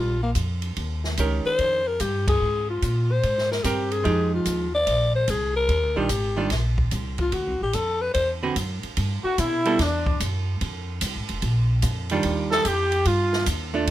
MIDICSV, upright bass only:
0, 0, Header, 1, 3, 480
1, 0, Start_track
1, 0, Tempo, 409836
1, 898, Time_signature, 4, 2, 24, 8
1, 16286, End_track
2, 0, Start_track
2, 0, Title_t, "Upright bass"
2, 0, Program_c, 0, 32
2, 0, Note_on_c, 0, 34, 72
2, 403, Note_off_c, 0, 34, 0
2, 414, Note_on_c, 0, 41, 89
2, 882, Note_off_c, 0, 41, 0
2, 899, Note_on_c, 0, 39, 75
2, 1365, Note_off_c, 0, 39, 0
2, 1382, Note_on_c, 0, 37, 80
2, 1678, Note_off_c, 0, 37, 0
2, 1861, Note_on_c, 0, 41, 66
2, 2327, Note_off_c, 0, 41, 0
2, 2348, Note_on_c, 0, 43, 83
2, 2811, Note_off_c, 0, 43, 0
2, 2826, Note_on_c, 0, 44, 67
2, 3290, Note_off_c, 0, 44, 0
2, 3307, Note_on_c, 0, 46, 77
2, 3771, Note_off_c, 0, 46, 0
2, 3789, Note_on_c, 0, 44, 69
2, 4252, Note_off_c, 0, 44, 0
2, 4267, Note_on_c, 0, 43, 84
2, 4732, Note_off_c, 0, 43, 0
2, 4747, Note_on_c, 0, 41, 72
2, 5211, Note_off_c, 0, 41, 0
2, 5218, Note_on_c, 0, 39, 74
2, 5687, Note_off_c, 0, 39, 0
2, 5703, Note_on_c, 0, 34, 65
2, 6170, Note_off_c, 0, 34, 0
2, 6182, Note_on_c, 0, 36, 90
2, 6649, Note_off_c, 0, 36, 0
2, 6660, Note_on_c, 0, 39, 78
2, 6829, Note_off_c, 0, 39, 0
2, 6829, Note_on_c, 0, 38, 41
2, 6969, Note_off_c, 0, 38, 0
2, 6976, Note_on_c, 0, 34, 54
2, 7129, Note_off_c, 0, 34, 0
2, 7146, Note_on_c, 0, 32, 69
2, 7612, Note_off_c, 0, 32, 0
2, 7619, Note_on_c, 0, 34, 71
2, 8088, Note_off_c, 0, 34, 0
2, 8103, Note_on_c, 0, 36, 82
2, 8570, Note_off_c, 0, 36, 0
2, 8581, Note_on_c, 0, 38, 75
2, 8747, Note_off_c, 0, 38, 0
2, 8747, Note_on_c, 0, 36, 50
2, 8907, Note_off_c, 0, 36, 0
2, 8913, Note_on_c, 0, 33, 54
2, 9058, Note_off_c, 0, 33, 0
2, 9068, Note_on_c, 0, 41, 74
2, 9532, Note_off_c, 0, 41, 0
2, 9545, Note_on_c, 0, 40, 71
2, 10011, Note_off_c, 0, 40, 0
2, 10023, Note_on_c, 0, 42, 83
2, 10320, Note_off_c, 0, 42, 0
2, 10510, Note_on_c, 0, 43, 82
2, 10804, Note_off_c, 0, 43, 0
2, 10989, Note_on_c, 0, 47, 86
2, 11452, Note_off_c, 0, 47, 0
2, 11466, Note_on_c, 0, 40, 78
2, 11930, Note_off_c, 0, 40, 0
2, 11949, Note_on_c, 0, 42, 84
2, 12411, Note_off_c, 0, 42, 0
2, 12428, Note_on_c, 0, 41, 78
2, 12890, Note_off_c, 0, 41, 0
2, 12904, Note_on_c, 0, 36, 84
2, 13065, Note_on_c, 0, 32, 50
2, 13082, Note_off_c, 0, 36, 0
2, 13222, Note_off_c, 0, 32, 0
2, 13228, Note_on_c, 0, 29, 64
2, 13373, Note_off_c, 0, 29, 0
2, 13382, Note_on_c, 0, 34, 84
2, 13846, Note_off_c, 0, 34, 0
2, 13856, Note_on_c, 0, 41, 104
2, 14323, Note_off_c, 0, 41, 0
2, 14339, Note_on_c, 0, 39, 80
2, 14804, Note_off_c, 0, 39, 0
2, 14815, Note_on_c, 0, 41, 79
2, 15282, Note_off_c, 0, 41, 0
2, 15292, Note_on_c, 0, 43, 81
2, 15760, Note_off_c, 0, 43, 0
2, 15771, Note_on_c, 0, 39, 102
2, 16240, Note_off_c, 0, 39, 0
2, 16286, End_track
3, 0, Start_track
3, 0, Title_t, "Muted upright bass strokes"
3, 1704, Note_on_c, 9, 29, 35
3, 1821, Note_off_c, 9, 29, 0
3, 10347, Note_on_c, 9, 29, 35
3, 10464, Note_off_c, 9, 29, 0
3, 10822, Note_on_c, 9, 29, 36
3, 10939, Note_off_c, 9, 29, 0
3, 16286, End_track
0, 0, End_of_file